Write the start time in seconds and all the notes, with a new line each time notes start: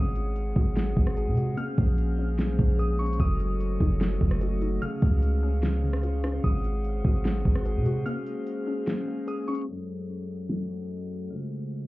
Already playing: G#1 G#3 F#4 G#4 C5 F#5 D#6
0.16 closed hi-hat
0.36 closed hi-hat
0.56 G#1 F#4, kick
0.76 G#3, snare, closed hi-hat
0.96 G#1 G#3, kick
1.07 cross-stick
1.17 G#4, closed hi-hat
1.27 C3
1.37 F#4, closed hi-hat
1.57 G#3 A#3 C#4 G#4 C5 F6, closed hi-hat
1.78 A#1, kick, closed hi-hat
1.98 closed hi-hat
2.18 C#4
2.39 A#3, snare, closed hi-hat
2.59 A#1 A#3, kick
2.79 G#4 D#6, closed hi-hat
2.99 C#4 C#6, closed hi-hat
3.06 closed hi-hat
3.13 closed hi-hat
3.20 F#1 F#3 A3 F#4 A4 D#5 D#6, kick, closed hi-hat
3.40 closed hi-hat
3.60 closed hi-hat
3.80 F#1 D#4, kick
4.01 F#3, snare, closed hi-hat
4.21 F#1 F#3, kick
4.31 cross-stick
4.41 F#4, closed hi-hat
4.61 D#4, closed hi-hat
4.82 C#3 C#4 F4 G#4 C5 C#5 F5 F6, closed hi-hat
5.02 C#2, kick, closed hi-hat
5.22 closed hi-hat
5.43 C#4
5.63 C#3, snare, closed hi-hat
5.84 C#3
5.93 cross-stick
6.03 F4, closed hi-hat
6.24 C#4, cross-stick, closed hi-hat
6.44 G#1 G#3 F#4 C5 F#5 D#6, kick, closed hi-hat
6.64 closed hi-hat
6.85 closed hi-hat
7.05 G#1 F#4, kick
7.25 G#3, snare, closed hi-hat
7.45 G#1 G#3, kick
7.55 cross-stick
7.66 G#4, closed hi-hat
7.76 C3
7.86 F#4, closed hi-hat
8.06 A#3 C#4 F6, closed hi-hat
8.27 closed hi-hat
8.47 closed hi-hat
8.67 C#4
8.87 A#3, snare, closed hi-hat
9.08 A#3
9.27 G#4 D#6, closed hi-hat
9.48 C#4 C#6, closed hi-hat
9.55 closed hi-hat
9.61 closed hi-hat
9.68 F#2 F#3 A3 F#4 A4 D#5
10.50 snare
11.30 C#3 G#3 C#4 F4 C5 F5 F6